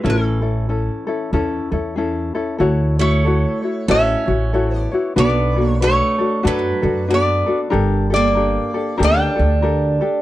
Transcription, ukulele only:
X:1
M:4/4
L:1/8
Q:"Swing" 1/4=94
K:A
V:1 name="Ukulele"
[CEA] [CEA] [CEA] [CEA] [CEA] [CEA] [CEGA] [CEA] | [K:D] [EFAc] [EFc] [EFAc] [EFc] [EFAc] [EFc] [EFAc] [EFc] | [DFAB] [DFA] [DFAB] [DFA] [DFAB] [DFA] [DFAB] [DFA] | [DGA_B] [DGA] [DGAB] [DGA] [DGAB] [DGA] [DGAB] [DGA] |]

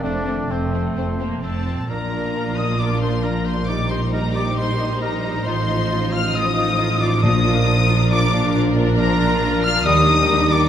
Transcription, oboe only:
X:1
M:4/4
L:1/8
Q:1/4=135
K:Bb
V:1 name="Oboe"
d2 c4 A2 | B3 e d c B c | d c B d c2 B2 | c3 f e3 d |
e3 z d2 z2 | B3 f e3 d |]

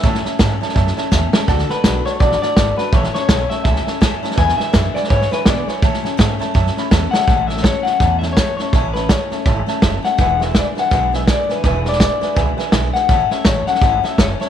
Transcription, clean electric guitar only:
X:1
M:4/4
L:1/8
Q:"Swing" 1/4=165
K:A
V:1 name="Clean electric guitar"
e3 z4 z | A B2 c d d2 B | c c2 e e3 z | g e2 d c B d c- |
c3 z4 f- | f e c f2 e c c- | c B c2 z3 f | f e d f2 e d B- |
B d d2 z3 f- | f e c f2 e c c |]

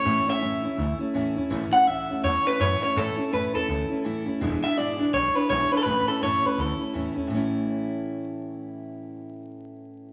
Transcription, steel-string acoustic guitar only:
X:1
M:4/4
L:1/8
Q:"Swing" 1/4=166
K:A
V:1 name="Steel-string acoustic guitar"
[A,,E,A,CE] [A,CE] [A,,E,A,CE] [A,CE] [E,A,CE] [A,CE] [A,,E,A,CE] [A,CE] | [A,,E,A,CE] [A,CE] [A,,E,A,CE] [A,CE] [E,A,CE] [A,CE] [A,,E,A,CE] [A,CE] | [A,,E,A,CE] [A,CE] [A,,E,A,CE] [A,CE] [E,A,CE] [A,CE] [A,,E,A,CE] [A,CE] | [E,,B,,E,G,DE] [E,G,DE] [E,,B,,E,G,DE] [E,G,DE] [E,G,DE] [E,G,DE] [E,,B,,E,G,DE] [E,G,DE] |
[A,,E,A,CE] [A,CE] [A,,E,A,CE] [A,CE] [E,A,CE] [A,CE] [A,,E,A,CE] [A,CE] | [A,,E,A,CE]8- | [A,,E,A,CE]8 |]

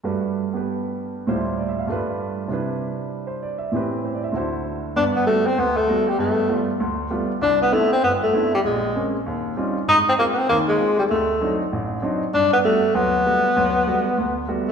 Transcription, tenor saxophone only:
X:1
M:4/4
L:1/16
Q:"Swing" 1/4=195
K:G
V:1 name="Tenor saxophone"
z16 | z16 | z16 | z16 |
D2 B,2 A,2 C2 B,2 A,4 G,2 | A,6 z8 z2 | D2 B,2 A,2 C2 B,2 A,4 G,2 | _A,6 z8 z2 |
_E2 C2 _B,3/2 =B,/2 C2 _B,2 _A,4 G,2 | A,6 z8 z2 | D2 B,2 A,4 B,8- | B,12 z2 A,2 |]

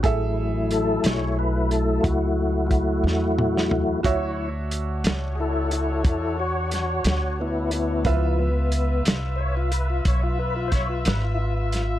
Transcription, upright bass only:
X:1
M:12/8
L:1/8
Q:3/8=60
K:F#m
V:1 name="Upright bass" clef=bass
A,,,3 B,,,3 C,,3 E,,3 | D,,3 C,,3 E,,3 D,,3 | C,,3 ^B,,,3 =B,,,3 G,,,3 |]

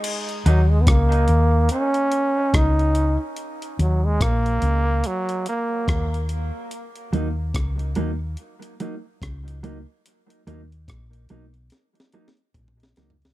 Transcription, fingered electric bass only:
X:1
M:4/4
L:1/16
Q:"Swing 16ths" 1/4=72
K:Ebm
V:1 name="Fingered electric bass" clef=bass
z2 E,,2 D,,2 E,,2 z4 D,,3 z | z2 E,,2 B,,,2 D,,2 z4 E,,3 z | z2 E,,2 D,,2 E,,2 z4 D,,3 z | z2 E,,2 B,,,2 C,,2 z4 B,,,2 D,,2 |]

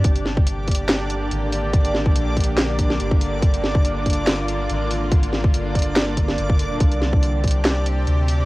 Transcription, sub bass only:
X:1
M:4/4
L:1/8
Q:"Swing 16ths" 1/4=142
K:Gphr
V:1 name="Sub bass" clef=bass
G,,,6 A,,,2- | A,,,2 B,,,4 G,,,2 | G,,,6 A,,,2- | A,,,2 G,,,4 G,,,2 |
C,,6 D,,2 |]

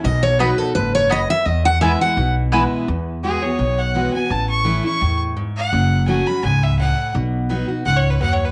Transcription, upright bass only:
X:1
M:4/4
L:1/8
Q:"Swing" 1/4=169
K:E
V:1 name="Upright bass" clef=bass
B,,,4 F,,,4 | E,,4 B,,,4 | E,,4 B,,,4 | A,,,4 E,,4 |
F,,,4 C,,4 | B,,,4 C,,2 D,,2 |]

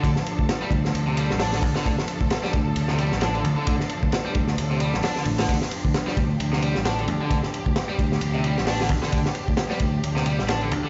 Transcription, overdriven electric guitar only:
X:1
M:4/4
L:1/16
Q:"Swing 16ths" 1/4=132
K:Dm
V:1 name="Overdriven electric guitar" clef=bass
D, z4 G, z3 C, G, z D D, z D, | D, z4 G, z3 C, G, z D D, z D, | D, z4 G, z3 C, G, z D D, z D, | D, z4 G, z3 C, G, z D D, z D, |
D, z4 G, z3 C, G, z D D, z D, | D, z4 G, z3 C, G, z D D, z D, |]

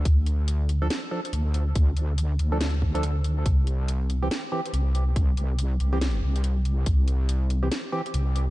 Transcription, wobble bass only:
X:1
M:4/4
L:1/8
Q:"Swing 16ths" 1/4=141
K:Cmix
V:1 name="Wobble bass" clef=bass
D,,4 z2 D,,2 | D,,3 D,,4- D,, | C,,4 z2 C,,2 | C,,3 C,,2 C,,3 |
C,,4 z2 C,,2 |]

